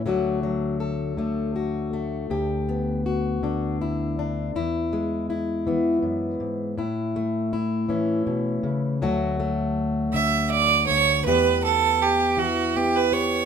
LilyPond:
<<
  \new Staff \with { instrumentName = "Fiddle" } { \time 3/4 \key d \major \tempo 4 = 80 r2. | r2. | r2. | r2. |
r4. e''8 d''8 cis''8 | b'8 a'8 g'8 fis'8 g'16 b'16 cis''8 | }
  \new Staff \with { instrumentName = "Steel-string acoustic guitar" } { \time 3/4 \key d \major << { <d fis a fis'>8 fis8 a'8 a8 fis'8 a8 | g'8 b8 fis'8 d'8 e'8 d'8 | e'8 gis8 e'8 b4. | e'8 a8 e'8 cis'4. |
<fis a fis'>8 a2~ a8 | <b g'>2 b8 g'8 | } \\ { d,4. d4. | d,4. d4. | e,4. e8 fis,8 gis,8 | a,4. e8 b,8 cis8 |
d,4. d4 d,8 | e,4. e4. | } >> }
>>